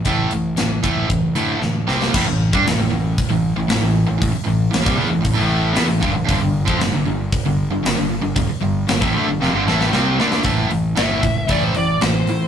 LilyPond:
<<
  \new Staff \with { instrumentName = "Lead electric guitar" } { \time 4/4 \key a \minor \tempo 4 = 115 r1 | r1 | r1 | r1 |
r1 | r4 e''4 d''16 c''16 d''8 c''4 | }
  \new Staff \with { instrumentName = "Overdriven electric guitar" } { \clef bass \time 4/4 \key a \minor <a, e a>8 <a, e>8 <a, e>8 <a, e a>8 <a, e>8 <a, e a>8 <a, e>8 <c g c'>8 | <a, e>16 <a, e>8 <g d'>16 <a, e>16 <a, e>16 <a, e>8 r16 <a, e>8 <a, e>16 <a, e>16 <a, e>8 <a, e>16 | <a, e>16 r16 <a, e>8 <a, e>16 <c g>16 <e b>16 <a, e>16 <a, e>16 <a, e a>8. <e b>16 <a, e>16 <g, d>16 <a, e>16 | <g, d>16 <g, d>8 <f c'>16 <g, d>16 <g, d>16 <g, d>8 r16 <g, d>8 <g, d>16 <g, d>16 <g, d>8 <g, d>16 |
<g, d>16 r16 <g, d>8 <g, d>16 <a, e>16 <d a>16 <g, d>16 <f, c>16 <g, d>16 <a, e a>8 <c g c'>8 <d a d'>8 | <a, e a>8 <a, e>8 <a, e a>8 <a, e>8 <a, e a>8 <a, e>8 <a, e>8 <a, e>8 | }
  \new Staff \with { instrumentName = "Overdriven electric guitar" } { \clef bass \time 4/4 \key a \minor <a, e a>8 <a, e>8 <a, e>8 <a, e a>8 <a, e>8 <a, e a>8 <a, e>8 <c g c'>8 | <a, e>16 <a, e>8 <g d'>16 <a, e>16 <a, e>16 <a, e>8 r16 <a, e>8 <a, e>16 <a, e>16 <a, e>8 <a, e>16 | <a, e>16 r16 <a, e>8 <a, e>16 <c g>16 <e b>16 <a, e>16 <a, e>16 <a, e a>8. <e b>16 <a, e>16 <g, d>16 <a, e>16 | <g, d>16 <g, d>8 <f c'>16 <g, d>16 <g, d>16 <g, d>8 r16 <g, d>8 <g, d>16 <g, d>16 <g, d>8 <g, d>16 |
<g, d>16 r16 <g, d>8 <g, d>16 <a, e>16 <d a>16 <g, d>16 <f, c>16 <g, d>16 <a, e a>8 <c g c'>8 <d a d'>8 | <a, e a>8 <a, e>8 <a, e a>8 <a, e>8 <a, e a>8 <a, e>8 <a, e>8 <a, e>8 | }
  \new Staff \with { instrumentName = "Overdriven electric guitar" } { \clef bass \time 4/4 \key a \minor r1 | <a, e>16 <a, e>8 <g d'>16 <a, e>16 <a, e>16 <a, e>8 r16 <a, e>8 <a, e>16 <a, e>16 <a, e>8 <a, e>16 | <a, e>16 r16 <a, e>8 <a, e>16 <c g>16 <e b>16 <a, e>16 <a, e>16 <a, e a>8. <e b>16 <a, e>16 <g, d>16 <a, e>16 | <g, d>16 <g, d>8 <f c'>16 <g, d>16 <g, d>16 <g, d>8 r16 <g, d>8 <g, d>16 <g, d>16 <g, d>8 <g, d>16 |
<g, d>16 r16 <g, d>8 <g, d>16 <a, e>16 <d a>16 <g, d>16 <f, c>16 <g, d>16 <a, e a>8 <c g c'>8 <d a d'>8 | r1 | }
  \new Staff \with { instrumentName = "Fingered electric bass" } { \clef bass \time 4/4 \key a \minor a,,8 a,,8 a,,8 a,,8 a,,8 d,8 d,8 c,8 | a,,16 a,,8 g,16 a,,16 a,,16 a,,8 r16 a,,8 a,,16 a,,16 a,,8 a,,16 | a,,16 r16 a,,8 a,,16 c,16 e,16 a,,16 a,,16 a,,8. e,16 a,,16 g,,16 a,,16 | g,,16 g,,8 f,16 g,,16 g,,16 g,,8 r16 g,,8 g,,16 g,,16 g,,8 g,,16 |
g,,16 r16 g,,8 g,,16 a,,16 d,16 g,,16 f,,16 g,,16 a,,8 c,8 d,8 | a,,8 a,,8 g,,8 a,,8 a,,8 a,,8 a,,8 a,8 | }
  \new DrumStaff \with { instrumentName = "Drums" } \drummode { \time 4/4 <hh bd>8 hh8 <hh sn>8 <hh bd>8 <hh bd>8 hh8 sn8 sn16 sn16 | <cymc bd>8. bd16 <hho sn>4 <hho bd>4 <hho sn>4 | <hho bd>4 <hho sn>16 bd8. <hho bd>4 <hho sn>8 bd8 | <hho bd>8. bd16 <hho sn>4 <hho bd>4 <hho sn>4 |
<hho bd>4 <hho sn>16 bd8. sn8 sn16 sn16 sn8 sn16 sn16 | <hho bd>8 hho8 <hho sn>8 <hho bd>8 <hho bd>8 hho8 <hho sn>8 hho8 | }
>>